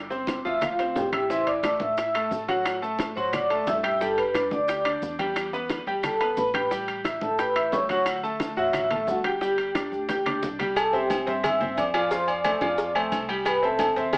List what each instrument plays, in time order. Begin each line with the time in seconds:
Already playing: upright bass G1
0.10 grand piano C4 C5 C6, high conga, maracas
0.27 high bongo, high conga, high timbale, maracas
0.45 upright bass D2, grand piano F3 F4 F5, vibraphone E5 E6, high bongo, maracas
0.61 vibraphone F4 F5, high bongo, high conga, low conga, high timbale, claves, maracas
0.78 grand piano C4 C5 C6, high bongo, high conga, high timbale, maracas
0.96 upright bass A1, vibraphone G4 G5, high bongo, low bongo, high conga, low timbale, maracas
1.12 grand piano E4 E5 E6, high bongo, high conga, high timbale, claves, maracas
1.29 grand piano E3 E4 E5, vibraphone C5 C6, high bongo, high conga, maracas
1.47 vibraphone D5 D6, high conga, high timbale, maracas
1.63 grand piano A3 A4 A5, high bongo, high conga, high timbale, claves, maracas
1.80 upright bass A2, vibraphone E5 E6, high bongo, high conga, maracas
1.97 grand piano E4 E5 E6, high bongo, high conga, high timbale, maracas
2.14 grand piano A3 A4 A5, high bongo, high conga, high timbale, claves, maracas
2.31 upright bass A2, high bongo, low bongo, high conga, maracas
2.48 grand piano F#3 F#4 F#5, high bongo, high conga, high timbale, maracas
2.65 high bongo, high conga, high timbale, claves, maracas
2.82 grand piano A3 A4 A5, high conga, maracas
2.99 high bongo, high conga, high timbale, maracas
3.16 upright bass A2, grand piano F#3 F#4 F#5, vibraphone C5 C6, high bongo, maracas
3.33 vibraphone D5 D6, high bongo, high conga, low conga, high timbale, claves, maracas
3.50 grand piano A3 A4 A5, high bongo, high conga, high timbale, maracas
3.67 upright bass G2, vibraphone E5 E6, high bongo, low bongo, high conga, low timbale, maracas
3.83 grand piano G4 G5 G6, high bongo, high timbale, claves, maracas
4.00 grand piano G3 G4 G5, vibraphone A4 A5, high bongo, high conga, maracas
4.17 vibraphone B4 B5, high conga, high timbale, maracas
4.34 grand piano D4 D5 D6, high bongo, high conga, high timbale, claves, maracas
4.51 upright bass D2, vibraphone D5 D6, high bongo, high conga, maracas
4.68 grand piano G4 G5 G6, high bongo, high conga, high timbale, maracas
4.85 grand piano D4 D5 D6, high bongo, high conga, high timbale, claves, maracas
5.02 upright bass E2, high bongo, low bongo, high conga, maracas
5.19 grand piano G3 G4 G5, high bongo, high conga, high timbale, maracas
5.36 high bongo, high conga, high timbale, claves, maracas
5.53 grand piano B3 B4 B5, high conga, maracas
5.69 high bongo, high conga, high timbale, maracas
5.86 upright bass E2, grand piano G3 G4 G5, vibraphone G4 G5, high bongo, maracas
6.03 vibraphone A4 A5, high bongo, high conga, low conga, high timbale, claves, maracas
6.20 grand piano B3 B4 B5, high bongo, high conga, high timbale, maracas
6.37 upright bass A1, vibraphone B4 B5, high bongo, low bongo, high conga, maracas
6.54 grand piano G4 G5 G6, high bongo, high conga, high timbale, claves, maracas
6.71 grand piano G3 G4 G5, high bongo, high conga, maracas
6.88 high conga, high timbale, maracas
7.04 grand piano E4 E5 E6, high bongo, high conga, high timbale, claves, maracas
7.21 upright bass A2, vibraphone A4 A5, high bongo, high conga, maracas
7.38 grand piano G4 G5 G6, vibraphone B4 B5, high bongo, high conga, high timbale, maracas
7.55 grand piano E4 E5 E6, high bongo, high conga, high timbale, claves, maracas
7.72 upright bass D2, vibraphone C#5 C#6, high bongo, low bongo, high conga, low timbale, maracas
7.89 grand piano F#3 F#4 F#5, high bongo, high conga, high timbale, maracas
8.06 high bongo, high conga, high timbale, claves, maracas
8.23 grand piano A3 A4 A5, high conga, maracas
8.40 high bongo, high conga, high timbale, maracas
8.56 upright bass A1, grand piano F#3 F#4 F#5, vibraphone E5 E6, high bongo, maracas
8.73 high bongo, high conga, low conga, high timbale, claves, maracas
8.90 grand piano A3 A4 A5, high bongo, high conga, low conga, high timbale, maracas
9.07 upright bass G1, vibraphone F#4 F#5, high bongo, low bongo, high conga, maracas
9.24 grand piano G4 G5 G6, vibraphone G4 G5, high bongo, high conga, high timbale, claves, maracas
9.41 grand piano G3 G4 G5, high bongo, high conga, maracas
9.58 high conga, high timbale, maracas
9.75 grand piano D4 D5 D6, high bongo, high conga, high timbale, claves, maracas
9.92 upright bass D2, high bongo, maracas
10.09 grand piano G4 G5 G6, high bongo, high conga, high timbale, maracas
10.26 grand piano D4 D5 D6, high bongo, low conga, high timbale, claves, maracas
10.43 upright bass C2, high bongo, low bongo, low conga, maracas
10.59 grand piano G3 G4 G5, high bongo, low conga, high timbale, maracas
10.76 vibraphone A4 A5, cowbell, high conga, low agogo, claves, maracas
10.93 grand piano C4 C5 E5, vibraphone G4 G5, high conga, maracas
11.10 cowbell, high conga, low agogo, maracas
11.27 upright bass G2, grand piano C4 C5 E5, cowbell, maracas
11.43 vibraphone E5 E6, cowbell, high conga, low conga, low agogo, claves, maracas
11.60 grand piano C4 C5 E5, high conga, low conga, maracas
11.77 upright bass F2, vibraphone D5 D6, cowbell, high conga, low agogo, maracas
11.94 grand piano F3 F4 F5, cowbell, low agogo, claves, maracas
12.11 grand piano F3 F4 F5, vibraphone C5 C6, cowbell, high conga, maracas
12.28 vibraphone D5 D6, high conga, low agogo, maracas
12.44 grand piano A3 A4 C5, cowbell, high conga, low agogo, claves, maracas
12.61 upright bass F2, grand piano F3 F4 F5, cowbell, high conga, low agogo, maracas
12.78 cowbell, high conga, maracas
12.95 grand piano A3 A4 C5, high conga, low agogo, claves, maracas
13.12 upright bass C2, cowbell, high conga, low agogo, maracas
13.29 grand piano G3 G4 G5, low agogo, maracas
13.45 vibraphone B4 B5, cowbell, high conga, low agogo, claves, maracas
13.62 grand piano C4 C5 E5, vibraphone A4 A5, high conga, maracas
13.79 cowbell, high conga, low agogo, maracas
13.96 upright bass E2, grand piano C4 C5 E5, cowbell, maracas
14.13 vibraphone G4 G5, cowbell, high conga, low conga, low agogo, claves, maracas